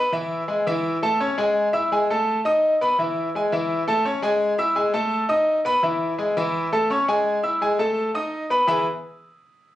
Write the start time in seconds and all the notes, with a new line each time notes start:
0.12 E3 E4 E5
0.48 G#3 G#4 G#5
0.67 E3 E4 E5
1.02 A3 A4 A5
1.20 C#4 C#5 C#6
1.38 G#3 G#4 G#5
1.73 E4 E5 E6
1.92 G#3 G#4 G#5
2.10 A3 A4 A5
2.45 D#4 D#5 D#6
2.81 B3 B4 B5
2.98 E3 E4 E5
3.35 G#3 G#4 G#5
3.52 E3 E4 E5
3.88 A3 A4 A5
4.05 C#4 C#5 C#6
4.22 G#3 G#4 G#5
4.58 E4 E5 E6
4.76 G#3 G#4 G#5
4.94 A3 A4 A5
5.29 D#4 D#5 D#6
5.65 B3 B4 B5
5.83 E3 E4 E5
6.18 G#3 G#4 G#5
6.37 E3 E4 E5
6.73 A3 A4 A5
6.90 C#4 C#5 C#6
7.08 G#3 G#4 G#5
7.43 E4 E5 E6
7.61 G#3 G#4 G#5
7.79 A3 A4 A5
8.15 D#4 D#5 D#6
8.50 B3 B4 B5
8.67 E3 B3 E4 G#4 B4 E5